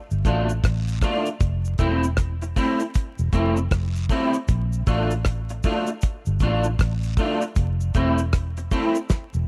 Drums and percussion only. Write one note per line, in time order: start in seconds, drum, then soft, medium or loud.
0.11 cabasa medium
0.25 kick medium
0.25 closed hi-hat medium
0.25 cabasa medium
0.49 cabasa medium
0.64 kick loud
0.64 cross-stick loud
0.64 closed hi-hat medium
0.64 cabasa medium
0.64 long guiro medium
0.87 closed hi-hat medium
0.87 cabasa medium
1.01 kick loud
1.01 cross-stick medium
1.01 open hi-hat medium
1.01 cabasa medium
1.26 closed hi-hat medium
1.26 cabasa medium
1.40 kick loud
1.40 closed hi-hat medium
1.40 cabasa medium
1.65 cabasa medium
1.78 kick medium
1.78 closed hi-hat medium
1.78 cabasa medium
2.03 closed hi-hat soft
2.03 cabasa medium
2.17 kick loud
2.17 cross-stick loud
2.17 closed hi-hat medium
2.17 cabasa medium
2.41 closed hi-hat medium
2.41 cabasa medium
2.56 kick medium
2.56 open hi-hat medium
2.56 cabasa medium
2.80 closed hi-hat medium
2.80 cabasa medium
2.94 kick loud
2.94 closed hi-hat medium
2.94 cabasa medium
3.18 cabasa medium
3.33 kick medium
3.33 closed hi-hat medium
3.33 cabasa medium
3.57 cabasa medium
3.71 kick loud
3.71 cross-stick loud
3.71 closed hi-hat medium
3.71 cabasa medium
3.71 long guiro medium
3.95 closed hi-hat medium
3.95 cabasa soft
4.09 kick loud
4.09 open hi-hat medium
4.09 cabasa medium
4.33 closed hi-hat medium
4.33 cabasa medium
4.48 kick loud
4.48 closed hi-hat medium
4.48 cabasa medium
4.73 cabasa medium
4.86 kick medium
4.86 open hi-hat medium
4.86 cabasa medium
5.11 closed hi-hat soft
5.11 cabasa medium
5.25 kick loud
5.25 cross-stick loud
5.25 closed hi-hat medium
5.25 cabasa medium
5.49 closed hi-hat medium
5.49 cabasa soft
5.63 kick medium
5.63 open hi-hat medium
5.63 cabasa medium
5.87 closed hi-hat medium
5.87 cabasa medium
6.02 kick loud
6.02 closed hi-hat medium
6.02 cabasa medium
6.26 cabasa medium
6.40 kick medium
6.40 closed hi-hat medium
6.40 cabasa medium
6.64 cabasa medium
6.79 kick loud
6.79 cross-stick loud
6.79 closed hi-hat medium
6.79 cabasa medium
6.79 long guiro medium
7.03 closed hi-hat medium
7.03 cabasa soft
7.17 kick loud
7.17 open hi-hat medium
7.17 cabasa medium
7.41 closed hi-hat medium
7.41 cabasa medium
7.56 kick loud
7.56 closed hi-hat medium
7.56 cabasa medium
7.80 cabasa medium
7.94 kick medium
7.94 closed hi-hat medium
7.94 cabasa medium
8.18 closed hi-hat soft
8.18 cabasa medium
8.33 kick loud
8.33 cross-stick loud
8.33 closed hi-hat medium
8.33 cabasa medium
8.57 closed hi-hat medium
8.57 cabasa medium
8.71 kick medium
8.71 open hi-hat medium
8.71 cabasa medium
8.95 closed hi-hat medium
8.95 cabasa medium
9.10 kick loud
9.10 snare medium
9.10 cabasa medium
9.34 cabasa soft